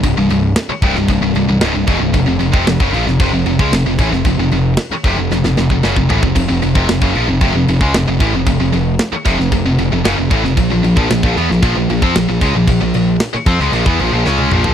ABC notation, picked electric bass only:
X:1
M:4/4
L:1/16
Q:1/4=114
K:none
V:1 name="Picked electric bass" clef=bass
C,,, C,,, C,,,2 z2 C,,, C,,, C,,, C,,, C,,, C,,, _D,,, C,,, E,,, C,,, | F,,, F,,, F,,, F,,, F,,, ^F,,, _B,,, =F,,, F,,, F,,, F,,, _D,, F,,, F,,, A,,, F,,, | F,,, F,,, F,,,2 z2 F,,, F,,, F,,, F,,, F,,, F,,, ^F,,, =F,,, A,,, F,,, | F,,, F,,, F,,, F,,, F,,, ^F,,, _B,,, =F,,, F,,, F,,, F,,, _D,, F,,, F,,, A,,, F,,, |
F,,, F,,, F,,,2 z2 F,,, F,,, F,,, F,,, F,,, F,,, ^F,,, =F,,, A,,, F,,, | _B,,, B,,, B,,, B,,, B,,, B,,, E,, B,,, B,,, B,,, B,,, F,, B,,, B,,, _D,, B,,, | _B,,, B,,, B,,,2 z2 F,, _D,, B,,, E,, B,,, B,,, D,,2 B,,, B,,, |]